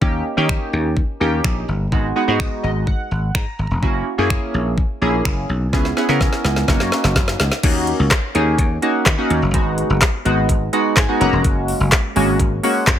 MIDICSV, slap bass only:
0, 0, Header, 1, 2, 480
1, 0, Start_track
1, 0, Key_signature, 5, "minor"
1, 0, Tempo, 476190
1, 17, Time_signature, 4, 2, 24, 8
1, 13094, End_track
2, 0, Start_track
2, 0, Title_t, "Slap bass"
2, 0, Program_c, 0, 36
2, 17, Note_on_c, 0, 39, 102
2, 207, Note_off_c, 0, 39, 0
2, 378, Note_on_c, 0, 51, 101
2, 567, Note_off_c, 0, 51, 0
2, 737, Note_on_c, 0, 39, 84
2, 1022, Note_off_c, 0, 39, 0
2, 1217, Note_on_c, 0, 39, 83
2, 1407, Note_off_c, 0, 39, 0
2, 1454, Note_on_c, 0, 34, 88
2, 1645, Note_off_c, 0, 34, 0
2, 1697, Note_on_c, 0, 31, 92
2, 1886, Note_off_c, 0, 31, 0
2, 1937, Note_on_c, 0, 32, 97
2, 2127, Note_off_c, 0, 32, 0
2, 2298, Note_on_c, 0, 44, 93
2, 2487, Note_off_c, 0, 44, 0
2, 2658, Note_on_c, 0, 32, 83
2, 2942, Note_off_c, 0, 32, 0
2, 3137, Note_on_c, 0, 32, 88
2, 3327, Note_off_c, 0, 32, 0
2, 3375, Note_on_c, 0, 44, 99
2, 3470, Note_off_c, 0, 44, 0
2, 3617, Note_on_c, 0, 32, 81
2, 3712, Note_off_c, 0, 32, 0
2, 3736, Note_on_c, 0, 28, 77
2, 3831, Note_off_c, 0, 28, 0
2, 3857, Note_on_c, 0, 30, 113
2, 4047, Note_off_c, 0, 30, 0
2, 4217, Note_on_c, 0, 42, 94
2, 4406, Note_off_c, 0, 42, 0
2, 4577, Note_on_c, 0, 34, 81
2, 4862, Note_off_c, 0, 34, 0
2, 5056, Note_on_c, 0, 34, 93
2, 5246, Note_off_c, 0, 34, 0
2, 5295, Note_on_c, 0, 30, 85
2, 5485, Note_off_c, 0, 30, 0
2, 5536, Note_on_c, 0, 35, 91
2, 5726, Note_off_c, 0, 35, 0
2, 5777, Note_on_c, 0, 37, 103
2, 5967, Note_off_c, 0, 37, 0
2, 6137, Note_on_c, 0, 49, 87
2, 6327, Note_off_c, 0, 49, 0
2, 6497, Note_on_c, 0, 37, 86
2, 6687, Note_off_c, 0, 37, 0
2, 6734, Note_on_c, 0, 30, 95
2, 6830, Note_off_c, 0, 30, 0
2, 6857, Note_on_c, 0, 42, 84
2, 6952, Note_off_c, 0, 42, 0
2, 7096, Note_on_c, 0, 30, 89
2, 7191, Note_off_c, 0, 30, 0
2, 7214, Note_on_c, 0, 30, 89
2, 7405, Note_off_c, 0, 30, 0
2, 7457, Note_on_c, 0, 37, 90
2, 7552, Note_off_c, 0, 37, 0
2, 7696, Note_on_c, 0, 39, 105
2, 7981, Note_off_c, 0, 39, 0
2, 8058, Note_on_c, 0, 37, 84
2, 8153, Note_off_c, 0, 37, 0
2, 8418, Note_on_c, 0, 39, 90
2, 8607, Note_off_c, 0, 39, 0
2, 8653, Note_on_c, 0, 39, 93
2, 8845, Note_off_c, 0, 39, 0
2, 9134, Note_on_c, 0, 51, 99
2, 9230, Note_off_c, 0, 51, 0
2, 9376, Note_on_c, 0, 39, 94
2, 9471, Note_off_c, 0, 39, 0
2, 9497, Note_on_c, 0, 30, 89
2, 9592, Note_off_c, 0, 30, 0
2, 9617, Note_on_c, 0, 32, 106
2, 9902, Note_off_c, 0, 32, 0
2, 9978, Note_on_c, 0, 30, 84
2, 10072, Note_off_c, 0, 30, 0
2, 10337, Note_on_c, 0, 32, 88
2, 10527, Note_off_c, 0, 32, 0
2, 11054, Note_on_c, 0, 44, 95
2, 11150, Note_off_c, 0, 44, 0
2, 11297, Note_on_c, 0, 30, 94
2, 11392, Note_off_c, 0, 30, 0
2, 11417, Note_on_c, 0, 28, 93
2, 11512, Note_off_c, 0, 28, 0
2, 11537, Note_on_c, 0, 30, 105
2, 11822, Note_off_c, 0, 30, 0
2, 11898, Note_on_c, 0, 30, 85
2, 11992, Note_off_c, 0, 30, 0
2, 12258, Note_on_c, 0, 32, 93
2, 12447, Note_off_c, 0, 32, 0
2, 12495, Note_on_c, 0, 32, 90
2, 12685, Note_off_c, 0, 32, 0
2, 12975, Note_on_c, 0, 42, 107
2, 13071, Note_off_c, 0, 42, 0
2, 13094, End_track
0, 0, End_of_file